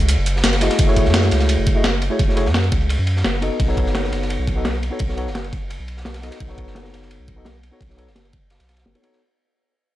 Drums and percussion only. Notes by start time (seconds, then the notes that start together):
0.00 closed hi-hat
0.09 closed hi-hat, ride
0.26 closed hi-hat, ride
0.36 snare
0.44 snare, closed hi-hat, ride
0.53 snare, ride
0.61 snare, closed hi-hat, ride
0.70 snare, ride
0.79 kick, closed hi-hat, ride
0.89 snare
0.96 kick, closed hi-hat, ride
1.05 snare
1.14 snare, closed hi-hat, ride
1.23 snare, closed hi-hat
1.31 snare, closed hi-hat, ride
1.40 snare, closed hi-hat
1.49 closed hi-hat, ride
1.67 kick, closed hi-hat, ride
1.84 snare, closed hi-hat, ride
2.02 closed hi-hat, ride
2.19 kick, closed hi-hat, ride
2.29 snare
2.37 closed hi-hat, ride
2.46 snare
2.54 snare, closed hi-hat, ride
2.63 closed hi-hat, ride
2.72 kick, closed hi-hat, ride
2.81 closed hi-hat
2.89 closed hi-hat, ride
2.98 closed hi-hat
3.07 closed hi-hat, ride
3.16 snare
3.24 snare, closed hi-hat, ride
3.34 snare
3.42 closed hi-hat, ride
3.60 kick, closed hi-hat, ride
3.69 snare
3.77 kick, closed hi-hat, ride
3.86 snare
3.95 snare, closed hi-hat, ride
4.04 snare, closed hi-hat
4.11 snare, closed hi-hat, ride
4.21 snare, closed hi-hat
4.30 closed hi-hat, ride
4.47 kick, closed hi-hat, ride
4.65 snare, closed hi-hat, ride
4.82 closed hi-hat, ride
4.99 kick, closed hi-hat, ride
5.09 snare
5.17 closed hi-hat, ride
5.27 snare
5.35 snare, closed hi-hat, ride
5.44 closed hi-hat, ride
5.53 kick, closed hi-hat, ride
5.62 closed hi-hat
5.70 closed hi-hat, ride
5.87 closed hi-hat, ride
5.97 snare
6.05 snare, closed hi-hat, ride
6.14 snare, ride
6.23 snare, closed hi-hat, ride
6.31 snare, ride
6.40 kick, closed hi-hat, ride
6.50 snare
6.58 kick, closed hi-hat, ride
6.67 snare
6.75 snare, closed hi-hat, ride
6.84 snare, closed hi-hat
6.93 snare, closed hi-hat, ride
7.02 snare, closed hi-hat
7.10 closed hi-hat, ride
7.28 kick, closed hi-hat, ride
7.45 snare, ride
7.63 closed hi-hat, ride
7.81 kick, closed hi-hat, ride
7.90 snare
7.98 closed hi-hat, ride
8.07 snare
8.16 snare, closed hi-hat, ride
8.25 closed hi-hat, ride
8.33 kick, closed hi-hat, ride
8.42 closed hi-hat
8.50 snare, closed hi-hat, ride
8.59 snare, closed hi-hat, ride
8.68 snare, closed hi-hat, ride
8.77 snare, ride
8.86 snare, closed hi-hat
8.95 ride
9.03 closed hi-hat, ride
9.13 snare